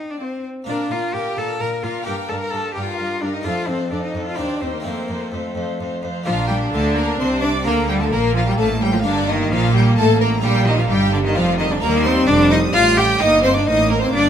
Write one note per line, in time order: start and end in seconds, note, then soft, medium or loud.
0.00 0.62 C4 soft
0.00 0.12 D#4 medium
0.10 0.21 D4 medium
0.10 0.21 D5 medium
0.21 0.44 C4 medium
0.21 0.44 C5 medium
0.21 0.56 C5 medium
0.21 0.56 F5 medium
0.64 0.88 A#2 soft
0.64 0.76 A#2 medium
0.64 2.01 A#3 soft
0.64 2.02 D4 soft
0.64 0.93 D4 medium
0.64 0.75 D5 medium
0.64 0.90 D5 medium
0.69 0.91 A#4 medium
0.91 1.12 A#2 soft
0.91 0.99 A#2 medium
0.91 1.15 F4 medium
0.91 1.14 A#4 soft
0.91 1.12 D5 medium
0.91 0.99 F5 medium
1.13 1.35 A#2 soft
1.13 1.23 A#2 medium
1.13 1.39 G4 medium
1.13 1.37 A#4 soft
1.13 1.35 D5 medium
1.13 1.36 G5 medium
1.36 1.45 A#2 medium
1.36 1.58 A#2 soft
1.36 1.62 A4 medium
1.36 1.60 A#4 soft
1.36 1.58 D5 soft
1.36 1.60 A5 medium
1.60 1.69 A#2 medium
1.60 1.82 A#2 soft
1.60 1.85 A#4 medium
1.60 1.82 A#4 medium
1.60 1.80 D5 soft
1.60 1.68 A#5 medium
1.82 1.92 A#2 medium
1.82 2.04 A#2 soft
1.82 2.05 F4 medium
1.82 2.06 A#4 medium
1.82 2.05 D5 soft
1.82 2.06 F5 medium
2.03 2.27 G2 soft
2.03 3.40 A#3 soft
2.03 3.41 D4 soft
2.03 2.14 G4 medium
2.03 2.29 D5 medium
2.03 2.30 G5 medium
2.07 2.15 G2 medium
2.07 2.28 A#4 medium
2.29 2.51 G2 soft
2.29 2.39 G2 medium
2.29 2.33 A4 medium
2.29 2.52 A#4 soft
2.29 2.51 D5 medium
2.29 2.41 A5 medium
2.41 2.52 A#4 medium
2.41 2.53 A#5 medium
2.50 2.74 G2 soft
2.50 2.62 G2 medium
2.50 2.73 A4 medium
2.50 2.74 A#4 soft
2.50 2.74 D5 medium
2.50 2.76 A5 medium
2.74 2.97 G2 medium
2.74 2.85 G2 medium
2.74 2.85 G4 medium
2.74 2.97 A#4 medium
2.74 2.97 D5 soft
2.74 2.88 G5 medium
2.86 3.22 F4 medium
2.86 3.22 F5 medium
2.98 3.20 G2 medium
2.98 3.07 G2 medium
2.98 3.21 A#4 soft
2.98 3.20 D5 medium
3.21 3.43 G2 soft
3.21 3.31 G2 medium
3.21 3.35 D4 medium
3.21 3.45 A#4 medium
3.21 3.43 D5 soft
3.21 3.34 D5 medium
3.33 3.46 D#4 medium
3.33 3.38 D#5 medium
3.41 4.34 A3 soft
3.41 4.35 D4 soft
3.41 3.70 F4 medium
3.41 3.67 A4 medium
3.41 3.66 D5 medium
3.45 3.66 F2 soft
3.45 3.54 F2 medium
3.45 3.68 F5 medium
3.67 3.89 F2 soft
3.67 3.77 F2 soft
3.67 3.92 C4 medium
3.67 3.90 A4 soft
3.67 3.92 C5 medium
3.67 3.89 D5 soft
3.90 3.99 F2 medium
3.90 4.13 F2 soft
3.90 4.03 D4 medium
3.90 4.13 A4 soft
3.90 4.12 D5 medium
3.90 4.03 D5 soft
4.03 4.26 D#4 medium
4.03 4.12 D#5 medium
4.13 4.23 F2 medium
4.13 4.36 F2 soft
4.13 4.38 A4 medium
4.13 4.37 D5 soft
4.26 4.39 F4 medium
4.26 4.38 F5 medium
4.34 4.59 D#2 soft
4.34 4.82 A#3 soft
4.34 4.80 C4 soft
4.34 4.63 D4 medium
4.34 4.60 C5 soft
4.34 4.61 D5 medium
4.34 4.60 G5 soft
4.38 4.46 D#2 soft
4.61 4.83 D#2 soft
4.61 4.70 D#2 medium
4.61 4.75 C4 medium
4.61 4.66 C5 soft
4.61 4.84 C5 medium
4.61 4.84 G5 soft
4.72 4.83 A#3 medium
4.72 4.82 A#4 medium
4.80 6.20 A3 soft
4.80 5.34 A#3 medium
4.80 6.21 C4 soft
4.80 5.31 A#4 medium
4.80 5.06 F5 medium
4.85 5.06 F2 soft
4.85 4.93 F2 medium
4.85 5.08 C5 medium
5.08 5.30 F2 soft
5.08 5.17 F2 soft
5.08 5.31 C5 soft
5.08 5.30 F5 soft
5.30 5.53 F2 soft
5.30 5.40 F2 soft
5.30 6.03 A3 medium
5.30 6.02 A4 soft
5.30 5.55 C5 soft
5.30 5.54 F5 soft
5.55 5.77 F2 soft
5.55 5.64 F2 medium
5.55 5.79 C5 soft
5.55 5.78 F5 soft
5.79 5.87 F2 soft
5.79 6.01 F2 soft
5.79 6.02 C5 medium
5.79 6.01 F5 soft
6.02 6.11 F2 medium
6.02 6.24 F2 soft
6.02 6.26 C5 medium
6.02 6.23 F5 medium
6.24 6.70 A#1 medium
6.24 6.70 A#2 medium
6.24 6.69 A#2 medium
6.24 6.34 F3 medium
6.24 7.61 A#3 medium
6.24 7.62 D4 medium
6.24 6.47 F4 medium
6.24 6.47 F5 loud
6.48 6.57 G3 medium
6.48 6.73 G4 medium
6.48 6.56 G5 loud
6.72 7.19 D2 medium
6.72 7.18 D3 medium
6.72 7.16 D3 medium
6.72 6.97 A3 medium
6.72 6.96 A4 medium
6.72 6.96 A5 loud
6.95 7.17 A#3 medium
6.95 7.20 A#4 medium
6.95 7.19 A#5 loud
7.18 7.65 C2 medium
7.18 7.65 C3 medium
7.18 7.62 C3 medium
7.18 7.41 C4 loud
7.18 7.43 C5 medium
7.18 7.28 C6 loud
7.41 7.49 D4 medium
7.41 7.66 D5 medium
7.41 7.66 D6 loud
7.63 8.13 D2 medium
7.63 8.12 D3 medium
7.63 8.09 D3 medium
7.63 9.00 A#3 medium
7.63 7.88 A#3 loud
7.63 8.11 A#3 medium
7.63 9.01 D4 medium
7.63 7.75 A#4 medium
7.63 7.88 A#5 loud
7.89 8.03 G3 medium
7.89 8.01 G4 medium
7.89 7.94 G5 loud
8.01 8.14 A3 medium
8.01 8.13 A4 medium
8.01 8.06 A5 medium
8.12 8.59 A#1 medium
8.12 8.59 A#2 medium
8.12 8.55 A#2 medium
8.12 9.03 A#3 medium
8.12 8.35 A#3 loud
8.12 8.36 A#4 loud
8.12 8.20 A#5 loud
8.35 8.47 F3 medium
8.35 8.47 F4 loud
8.35 8.47 F5 loud
8.46 8.59 G3 medium
8.46 8.51 G4 medium
8.46 8.53 G5 loud
8.58 9.04 A1 medium
8.58 9.01 A2 medium
8.58 9.04 A2 medium
8.58 8.81 A3 medium
8.58 8.66 A4 loud
8.58 8.81 A5 loud
8.81 8.95 G3 medium
8.81 8.86 G4 medium
8.81 8.94 G5 loud
8.92 9.04 F3 medium
8.92 8.97 F4 medium
8.92 9.06 F5 loud
9.02 9.52 G1 medium
9.02 9.51 G2 loud
9.02 9.48 G2 medium
9.02 9.27 D3 medium
9.02 10.39 A#3 medium
9.02 10.41 A#3 loud
9.02 10.40 D4 medium
9.02 9.28 D4 loud
9.02 9.29 D5 loud
9.28 9.53 D#3 medium
9.28 9.51 D#4 loud
9.28 9.51 D#5 loud
9.51 9.97 A#1 loud
9.51 9.97 A#2 medium
9.51 9.94 A#2 medium
9.51 9.74 F3 loud
9.51 9.74 F4 medium
9.51 9.74 F5 loud
9.74 9.97 G3 medium
9.74 9.97 G4 loud
9.74 9.84 G5 loud
9.96 10.43 A1 medium
9.96 10.43 A2 medium
9.96 10.40 A2 medium
9.96 10.06 A3 loud
9.96 10.20 A4 loud
9.96 10.21 A5 loud
10.20 10.42 A#3 medium
10.20 10.28 A#4 medium
10.20 10.44 A#5 loud
10.41 10.90 A#2 medium
10.41 10.86 A#2 medium
10.41 10.67 G3 loud
10.41 11.77 A#3 medium
10.41 11.78 D4 medium
10.41 10.66 G4 loud
10.45 10.91 A#1 medium
10.45 10.89 G3 medium
10.45 10.68 G5 loud
10.66 10.79 D#3 medium
10.66 10.78 D#4 medium
10.66 10.79 D#5 loud
10.77 10.88 F3 medium
10.77 10.90 F4 medium
10.77 10.91 F5 medium
10.89 11.37 G1 medium
10.89 11.36 G2 loud
10.89 11.33 G2 medium
10.89 11.12 G3 loud
10.89 11.81 G3 medium
10.89 11.13 G4 loud
10.89 11.13 G5 loud
11.12 11.24 D3 medium
11.12 11.25 D4 medium
11.12 11.19 D5 loud
11.24 11.37 D#3 medium
11.24 11.36 D#4 medium
11.24 11.37 D#5 loud
11.35 11.83 F1 medium
11.35 11.79 F2 medium
11.35 11.83 F2 medium
11.35 11.59 F3 loud
11.35 11.58 F4 loud
11.35 11.59 F5 loud
11.58 11.64 D#3 medium
11.58 11.70 D#4 medium
11.58 11.71 D#5 loud
11.70 11.75 D3 medium
11.70 11.82 D4 medium
11.70 11.83 D5 loud
11.80 12.25 D#2 medium
11.80 12.28 D#2 loud
11.80 13.18 G3 loud
11.80 12.26 A#3 medium
11.80 12.08 A#3 loud
11.80 13.17 D#4 medium
11.80 12.06 A#4 loud
11.80 12.05 A#5 loud
12.04 12.29 C4 loud
12.04 12.12 C5 loud
12.04 12.28 C6 loud
12.27 12.74 F1 loud
12.27 12.71 F2 medium
12.27 12.74 F2 loud
12.27 12.51 D4 loud
12.27 12.35 D5 loud
12.27 12.52 D6 loud
12.50 12.59 D#4 medium
12.50 12.58 D#5 loud
12.50 12.75 D#6 loud
12.74 13.20 A1 medium
12.74 13.20 A2 medium
12.74 13.17 A2 medium
12.74 12.99 F4 loud
12.74 12.97 F5 loud
12.74 12.98 F6 loud
12.97 13.21 G4 loud
12.97 13.21 G5 loud
12.97 13.21 G6 loud
13.17 13.66 G2 medium
13.17 13.64 A#3 medium
13.17 14.29 D#4 medium
13.17 13.41 D#4 loud
13.17 13.44 D#5 loud
13.17 13.43 D#6 loud
13.21 13.66 G1 medium
13.21 13.64 G2 medium
13.21 13.66 A#3 medium
13.42 13.54 C4 medium
13.42 13.55 C5 medium
13.42 13.55 C6 loud
13.55 13.68 D4 medium
13.55 13.67 D5 medium
13.55 13.68 D6 medium
13.66 14.13 A1 loud
13.66 14.10 A2 medium
13.66 14.13 A2 medium
13.66 14.29 A#3 medium
13.66 13.89 D#4 loud
13.66 13.90 D#5 loud
13.66 13.90 D#6 loud
13.90 13.95 A#3 medium
13.90 14.02 A#4 medium
13.90 14.02 A#5 loud
14.01 14.14 C4 loud
14.01 14.13 C5 loud
14.01 14.14 C6 loud
14.12 14.29 G1 medium
14.12 14.29 G2 medium
14.12 14.29 D4 loud
14.12 14.29 D5 loud
14.12 14.29 D6 loud